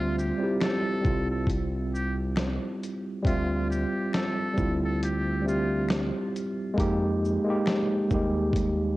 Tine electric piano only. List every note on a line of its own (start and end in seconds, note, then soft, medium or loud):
0.00 0.11 G3 loud
0.00 0.12 C4 medium
0.00 0.14 F4 loud
0.00 0.13 E5 medium
0.38 0.79 G3 medium
0.38 0.80 C4 medium
0.38 0.81 E4 medium
0.44 0.82 G4 medium
1.01 2.12 G3 medium
1.01 2.13 C4 medium
1.01 2.14 E4 medium
1.07 2.15 F4 medium
3.23 4.05 G3 loud
3.23 4.06 C4 medium
3.27 4.08 F4 loud
3.27 4.07 E5 medium
4.54 5.10 G3 medium
4.54 5.11 C4 medium
4.54 5.12 E4 medium
4.60 5.13 F4 medium
5.42 6.25 G3 medium
5.42 6.26 C4 medium
5.46 6.28 G4 medium
5.46 6.27 E5 medium
6.74 7.16 G#3 loud
6.74 7.17 A#3 loud
6.74 7.18 D#4 loud
6.80 7.19 G4 loud
7.44 7.85 G#3 medium
7.44 7.86 A#3 medium
7.49 7.87 D#4 medium
7.49 7.88 G4 loud
8.08 8.17 G3 medium
8.08 8.97 A#3 medium
8.12 8.97 G#3 medium
8.12 8.97 D#4 medium
8.12 8.97 G4 medium